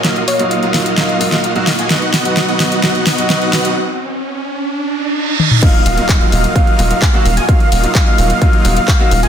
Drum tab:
CC |----------------|----------------|----------------|x---------------|
HH |xxoxxxoxxxoxxxox|xxoxxxoxxxoxxxox|----------------|xxoxxxoxxxoxxxox|
CP |----------------|----------------|----------------|----x-------x---|
SD |o-----o-o--o--o-|o-o-o-o-o-o-o-o-|----------------|----------------|
T1 |----------------|----------------|--------------o-|----------------|
T2 |----------------|----------------|---------------o|----------------|
BD |----------------|----------------|----------------|o---o---o---o---|

CC |----------------|
HH |xxoxxxoxxxoxxxox|
CP |----x-------x---|
SD |----------------|
T1 |----------------|
T2 |----------------|
BD |o---o---o---o---|